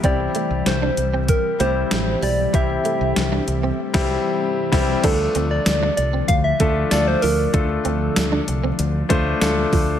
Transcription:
<<
  \new Staff \with { instrumentName = "Soft synth lead" } { \time 4/4 \key d \minor \tempo 4 = 96 d''4 c''4 bes'8 c''4 d''8 | e''2 r2 | a'8. d''8. d''8 f''16 e''8. d''16 c''16 bes'8 | a'2 r2 | }
  \new Staff \with { instrumentName = "Grand piano" } { \time 4/4 \key d \minor <g c' e' g'>4.~ <g c' e' g'>16 r8. <g c' e' g'>4~ <g c' e' g'>16 r16 | <g c' e' g'>4.~ <g c' e' g'>16 r8 <g c' e' g'>8 r8. <g c' e' g'>8 | <a d' f' a'>4.~ <a d' f' a'>16 r8. <a d' f' a'>8 <a d' f' a'>4 | <a d' f' a'>4.~ <a d' f' a'>16 r8. <a d' f' c''>8 <a d' f' a'>4 | }
  \new Staff \with { instrumentName = "Clean electric guitar" } { \time 4/4 \key d \minor c'16 r16 a16 r8 d'16 r16 c'16 r8 a16 r8. g16 r16 | c'16 r16 a16 r8 d'16 r16 c'16 r2 | d'16 r16 c'16 r8 d'16 r16 c'16 r8 a16 r8. f16 r16 | d'16 r16 c'16 r8 d'16 r16 c'16 r8 a16 r8. f16 r16 | }
  \new Staff \with { instrumentName = "String machine" } { \time 4/4 \key d \minor << { g'1 | a'1 | f'1 | r1 | } \\ { <e g c'>1~ | <e g c'>1 | <d f>1~ | <d f>1 | } >> }
  \new Staff \with { instrumentName = "Fingered electric bass" } { \clef bass \time 4/4 \key d \minor c,8 r16 c,16 c,8 c,8. r16 c,8 a,,8 b,,8 | c,8 r16 c,16 c,8 c,8 r16 c,8 r8. c,8 | d,8 d,8 d,8 c,8 d,8 d,8 d,8 d,8 | d,8 d,8 d,8 c,8 d,8 d,8 d,8 d,8 | }
  \new DrumStaff \with { instrumentName = "Drums" } \drummode { \time 4/4 <hh bd>8 hh8 <hh sn>8 hh8 <hh bd>8 hh8 <hh sn>8 hho8 | <hh bd>8 hh8 <hh sn>8 hh8 r16 <cymc bd sn>8. r8 <cymc bd sn>8 | <cymc hh bd>8 hh8 <hh sn tamb>8 hh8 <hh bd>8 <hh bd>8 <hh sn tamb>8 hho8 | <hh bd>8 hh8 <hh sn tamb>8 hh8 hh8 <hh bd>8 <hh sn tamb>8 <hho bd>8 | }
>>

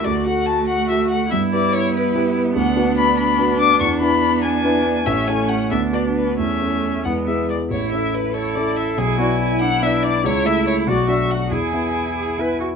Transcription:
<<
  \new Staff \with { instrumentName = "Violin" } { \time 6/8 \key e \dorian \tempo 4. = 94 d''8 fis''8 a''8 fis''8 e''8 fis''8 | e''8 d''8 cis''8 b'4 r8 | \key a \major fis''4 b''8 b''4 d'''8 | cis'''8 b''4 gis''4. |
e''8 gis''8 fis''8 e''8 d''8 b'8 | e''4. fis''8 e''8 d''8 | cis''8 e''8 b'8 cis''8 d''8 e''8 | gis''4. fis''8 e''8 d''8 |
cis''8 e''8 cis''8 d''8 e''8 fis''8 | gis''2~ gis''8 r8 | }
  \new Staff \with { instrumentName = "Cello" } { \time 6/8 \key e \dorian a2. | b2.~ | \key a \major b2. | b2. |
a4. b4. | a4. gis4 r8 | e'4. a'4. | gis'8 fis'8 e'8 d'4. |
e'4. fis'4. | gis'4. gis'8 b'8 fis'8 | }
  \new Staff \with { instrumentName = "Grand piano" } { \time 6/8 \key e \dorian d,8 <fis' a'>4. <fis' a'>4 | g,8 <e' g' b'>4. <e' g' b'>4 | \key a \major d,8 <d' fis' b'>4. <d' fis' b'>4 | e,8 <d' e' b'>4. <d' e' b'>4 |
a,,8 <cis' e' a'>4 d,8 <d' fis' b'>4 | e,8 <cis' e' a'>4 e,8 <b e' gis'>4 | a,,8 <cis' e' a'>4. <cis' e' a'>4 | b,,8 <b e' d''>4. <b e' d''>4 |
cis,8 <a e' e''>4 b,,8 <d' fis' d''>4 | e,8 <b e' e''>4. <b e' e''>4 | }
  \new Staff \with { instrumentName = "Viola" } { \time 6/8 \key e \dorian fis'2. | e'2. | \key a \major d'2.~ | d'2. |
cis'4. d'4. | cis'4. b4 r8 | e'4. e'4. | e'2. |
e'4. fis'4. | e'2~ e'8 r8 | }
>>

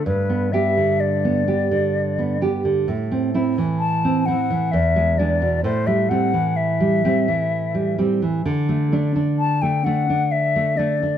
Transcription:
<<
  \new Staff \with { instrumentName = "Flute" } { \time 3/4 \key g \major \tempo 4 = 64 b'8 e''8 d''4. r8 | r4 a''8 fis''8 e''8 d''8 | c''16 e''16 fis''8 e''4. r8 | r4 a''16 g''16 fis''8 e''8 d''8 | }
  \new Staff \with { instrumentName = "Nylon-string guitar" } { \time 3/4 \key g \major g,16 b16 <b g'>16 d8 b16 <b g'>16 d8 b16 <b g'>16 d16 | a,16 c'16 <c' e'>16 e8 c'16 <c' e'>16 e16 e,16 gis16 <gis d'>16 b,16 | a,16 g16 <g c'>16 e8 g16 <g c'>16 e8 g16 <g c'>16 e16 | d16 a16 <a d'>16 d'8 a16 <a d'>16 d'8 a16 <a d'>16 d'16 | }
>>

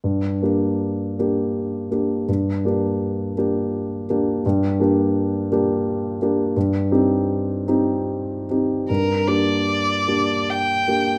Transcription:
<<
  \new Staff \with { instrumentName = "Violin" } { \time 3/4 \key g \minor \tempo 4 = 82 r2. | r2. | r2. | r2. |
bes'8 d''4. g''4 | }
  \new Staff \with { instrumentName = "Grand piano" } { \time 3/4 \key g \minor g,8 <bes d' g'>4 <bes d' g'>4 <bes d' g'>8 | g,8 <bes d' g'>4 <bes d' g'>4 <bes d' g'>8 | g,8 <bes d' g'>4 <bes d' g'>4 <bes d' g'>8 | g,8 <c' ees' g'>4 <c' ees' g'>4 <c' ees' g'>8 |
g,8 <bes d' g'>4 <bes d' g'>4 <bes d' g'>8 | }
>>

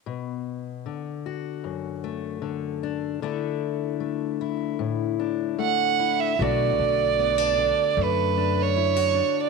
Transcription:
<<
  \new Staff \with { instrumentName = "Violin" } { \time 4/4 \key b \minor \tempo 4 = 76 r1 | r2. fis''8. e''16 | d''2 b'8. cis''4 d''16 | }
  \new Staff \with { instrumentName = "Steel-string acoustic guitar" } { \time 4/4 \key b \minor << { r4. fis'4 a4 d'8 | <a d' e'>4. e'4 d'4 e'8 | <d a d' fis'>4 b16 d'8. a8 d'8 e'16 fis'16 d'8 | } \\ { b,4 d4 fis,4 d4 | d4 a4 a,4 a4 | b,8 d4 d2~ d8 | } >> }
  \new Staff \with { instrumentName = "Upright bass" } { \clef bass \time 4/4 \key b \minor r1 | r1 | b,,8 b,,4. fis,2 | }
>>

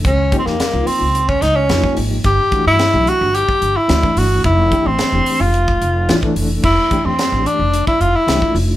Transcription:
<<
  \new Staff \with { instrumentName = "Tenor saxophone" } { \time 4/4 \key f \major \tempo 4 = 109 des'8~ des'32 c'32 bes8. c'8. des'16 ees'16 des'8. r8 | g'8. e'8. fis'8 g'8. e'8. fis'8 | e'8. c'4 f'4. r8. | e'8. c'8. d'8. e'16 f'16 e'8. r8 | }
  \new Staff \with { instrumentName = "Reed electric piano" } { \time 4/4 \key f \major r8 <f bes ees' g'>8 r16 <f bes ees' f'>8. <ees' g'>16 r8. <f bes ees' f'>16 <f bes ees' g'>8. | r8 <e a d' fis'>8 r16 <e a d' g'>8. <d' e'>16 r8. <e a d' fis'>16 <e a d' e'>8. | r8 <e a d' g'>8 <d' a'>16 <e a d' g'>8. r4 <e a d' f'>16 <e a d' a'>8. | r8 <e a d' g'>8 <d' f'>16 <e a d' g'>8. <d' g'>16 r8. <e a d' g'>16 <e' f'>8. | }
  \new Staff \with { instrumentName = "Upright bass" } { \clef bass \time 4/4 \key f \major des,8 r16 f,16 r16 c,16 r16 des,8. des,8 f,16 r16 aes,,8 | g,,16 r8 g,8 b,,16 r16 g,,8 r16 g,,16 r16 d,16 r16 g,,8 | f,,8 r16 a,,16 r16 e,,16 r16 f,,8. f,,8 a,,16 r16 f,,8 | f,,16 r8 f,8 a,,16 r16 f,,8 r16 f,,16 r16 c,16 r16 f,,8 | }
  \new DrumStaff \with { instrumentName = "Drums" } \drummode { \time 4/4 <hh bd>8 <hh bd>16 sn16 <hh sn>8 hho8 hh16 bd16 <hh sn>8 <hh sn>16 bd16 hho8 | <hh bd>8 <hh bd>8 <hh sn>8 hh8 hh16 bd16 hh8 <hh sn>16 bd16 hho8 | <hh bd>8 <hh bd>8 <hh sn>8 hho8 hh16 bd16 hh8 <hh sn>16 bd16 hho8 | <cymc bd>8 <hh bd>8 <hh sn>8 hh8 hh16 bd16 hh8 <hh sn>16 bd16 hho8 | }
>>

